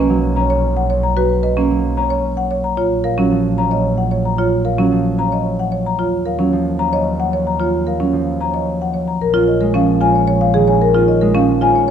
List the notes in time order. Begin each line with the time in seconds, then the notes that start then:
Already playing: B1 A#3 C#4
0.10 F#3
0.36 C#4 A#5
0.50 C#5
0.77 F#5
0.90 C#5
1.03 A#5
1.17 F#4 B4
1.43 B4 D#5
1.57 A#3 C#4
1.71 F#3
1.97 C#4 A#5
2.10 C#5
2.37 F#5
2.51 C#5
2.64 A#5
2.77 A#1 F4 C#5
3.04 A#4 F5
3.18 F#3 C#4
3.32 F3
3.58 C#4 A#5
3.71 C#5 D#5
3.98 F#5
4.11 C#5
4.25 A#5
4.38 F4 C#5
4.65 A#4 F5
4.78 F#3 C#4
4.92 F3
5.18 C#4 A#5
5.32 C#5 D#5
5.59 F#5
5.72 C#5
5.86 A#5
5.99 D#2 F4 C#5
6.26 A#4 F5
6.39 F#3 C#4
6.53 F3
6.79 C#4 A#5
6.93 C#5 D#5
7.20 F#5
7.33 C#5
7.47 A#5
7.60 F4 C#5
7.87 A#4 F5
8.00 F#3 C#4
8.13 F3
8.40 C#4 A#5
8.54 C#5 D#5
8.82 F#5
8.94 C#5
9.08 A#5
9.21 A#1 A#4
9.34 C#4 F4
9.48 D#5
9.61 G#3 A#4
9.74 F3 C#4 F5
10.01 C#4 F4 G#5
10.15 C#5
10.28 C#5
10.41 F5
10.54 D#3 G#4
10.68 C#5 G#5
10.82 A#4
10.94 C#4 F4
11.08 D#5
11.21 G#3 A#4
11.35 F3 C#4 F5
11.61 C#4 F4 G#5
11.75 C#5